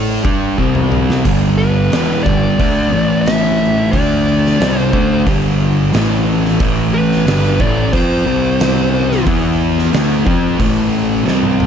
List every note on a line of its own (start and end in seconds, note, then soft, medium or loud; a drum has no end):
0.00 0.21 A2 medium
0.00 0.23 A3 medium
0.00 0.24 E4 loud
0.00 0.24 A4 loud
0.25 0.56 G2 loud
0.25 0.57 G3 loud
0.25 0.57 D4 loud
0.25 0.58 G4 loud
0.25 kick loud
0.58 1.21 C2 medium
0.58 1.24 C3 medium
0.58 1.24 G3 medium
0.58 1.24 C4 medium
0.58 kick medium
0.75 mid tom medium
0.92 mid tom medium
1.10 snare medium
1.25 1.88 G1 loud
1.25 1.91 G2 medium
1.25 1.91 D3 medium
1.25 1.91 G3 loud
1.25 kick loud
1.25 open hi-hat medium
1.25 splash medium
1.58 2.23 B4 medium
1.92 2.23 E1 loud
1.92 2.25 E2 loud
1.92 2.25 B2 medium
1.92 2.25 E3 loud
1.92 snare loud
1.92 open hi-hat medium
2.23 2.57 G1 medium
2.23 2.58 G2 loud
2.23 2.58 D3 loud
2.23 2.58 G3 loud
2.23 3.28 D5 loud
2.23 kick loud
2.59 2.90 D2 loud
2.59 2.92 D3 loud
2.59 2.92 A3 medium
2.59 2.92 D4 medium
2.59 kick loud
2.59 open hi-hat medium
2.93 3.89 A1 medium
2.93 3.92 A2 loud
2.93 3.92 E3 medium
2.93 3.93 A3 loud
3.21 3.93 E5 loud
3.26 snare loud
3.26 open hi-hat medium
3.91 4.56 D2 loud
3.91 4.59 D3 loud
3.91 4.59 A3 medium
3.91 4.59 D4 medium
3.91 4.80 D5 medium
3.91 kick medium
3.91 open hi-hat medium
4.45 snare soft
4.60 4.91 C2 loud
4.60 4.92 C3 medium
4.60 4.93 G3 loud
4.60 4.93 C4 loud
4.60 snare loud
4.60 open hi-hat medium
4.80 5.21 C5 medium
4.93 5.24 D2 medium
4.93 5.25 D3 medium
4.93 5.26 A3 medium
4.93 5.26 D4 loud
4.93 kick loud
5.26 5.90 G1 medium
5.26 5.92 G2 medium
5.26 5.92 D3 medium
5.26 5.93 G3 loud
5.26 kick loud
5.26 open hi-hat medium
5.92 6.56 A1 loud
5.92 6.58 A2 medium
5.92 6.59 E3 medium
5.92 6.59 A3 medium
5.92 snare loud
5.92 open hi-hat medium
6.45 snare soft
6.60 7.23 A1 medium
6.60 7.25 A2 medium
6.60 7.26 E3 medium
6.60 7.26 A3 loud
6.60 kick loud
6.60 open hi-hat medium
6.94 7.61 B4 loud
7.12 snare soft
7.26 7.58 G1 loud
7.26 7.59 G2 medium
7.26 7.59 D3 medium
7.26 7.59 G3 loud
7.26 snare loud
7.26 open hi-hat medium
7.59 7.91 A1 loud
7.59 7.92 A2 loud
7.59 7.92 E3 loud
7.59 7.92 A3 loud
7.59 7.94 D5 loud
7.59 kick loud
7.92 8.24 F2 medium
7.92 8.25 F3 medium
7.92 8.25 C4 medium
7.92 8.25 F4 loud
7.92 9.23 C5 medium
7.92 kick loud
7.92 open hi-hat medium
8.26 9.22 C2 loud
8.26 9.25 C3 loud
8.26 9.25 G3 loud
8.26 9.26 C4 loud
8.60 snare loud
8.60 open hi-hat medium
9.12 snare soft
9.26 9.89 E2 loud
9.26 9.92 E3 loud
9.26 9.92 B3 medium
9.26 9.92 E4 loud
9.26 kick loud
9.26 open hi-hat medium
9.78 snare soft
9.92 10.24 D2 loud
9.92 10.25 D3 loud
9.92 10.25 A3 loud
9.92 10.25 D4 loud
9.92 snare loud
9.92 open hi-hat medium
10.25 10.57 F2 medium
10.25 10.58 F3 loud
10.25 10.58 C4 medium
10.25 10.58 F4 loud
10.25 kick loud
10.59 11.22 A1 medium
10.59 11.24 A2 medium
10.59 11.25 E3 medium
10.59 11.25 A3 medium
10.59 kick loud
10.59 open hi-hat medium
11.24 11.67 C2 medium
11.24 11.67 C3 medium
11.24 11.67 G3 medium
11.24 11.67 C4 medium
11.24 snare medium
11.43 high tom medium
11.60 mid tom medium